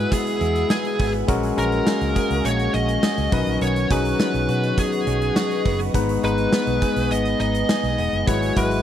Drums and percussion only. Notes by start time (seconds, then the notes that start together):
0.12 kick, closed hi-hat
0.27 closed hi-hat
0.41 closed hi-hat
0.56 closed hi-hat
0.70 snare, tambourine
0.85 closed hi-hat
0.99 kick, open hi-hat
1.14 closed hi-hat
1.28 kick, closed hi-hat
1.43 closed hi-hat
1.58 closed hi-hat
1.72 closed hi-hat
1.87 snare, tambourine
2.01 closed hi-hat
2.16 kick, closed hi-hat
2.31 closed hi-hat
2.45 closed hi-hat
2.59 closed hi-hat
2.74 closed hi-hat
2.89 closed hi-hat
3.03 snare, tambourine
3.18 closed hi-hat
3.32 kick, open hi-hat
3.47 closed hi-hat
3.61 closed hi-hat
3.76 closed hi-hat
3.91 kick, closed hi-hat
4.05 closed hi-hat
4.20 snare, tambourine
4.34 closed hi-hat
4.49 closed hi-hat
4.64 closed hi-hat
4.78 kick, closed hi-hat
4.92 closed hi-hat
5.07 closed hi-hat
5.22 closed hi-hat
5.36 snare, tambourine
5.51 closed hi-hat
5.65 kick, open hi-hat
5.80 closed hi-hat
5.94 kick, closed hi-hat
6.09 closed hi-hat
6.24 closed hi-hat
6.38 closed hi-hat
6.52 snare, tambourine
6.67 closed hi-hat
6.82 kick, closed hi-hat
6.96 closed hi-hat
7.11 closed hi-hat
7.25 closed hi-hat
7.40 closed hi-hat
7.55 closed hi-hat
7.69 snare, tambourine
7.84 closed hi-hat
7.98 open hi-hat
8.13 closed hi-hat
8.28 kick, closed hi-hat
8.42 closed hi-hat
8.57 kick, closed hi-hat
8.71 closed hi-hat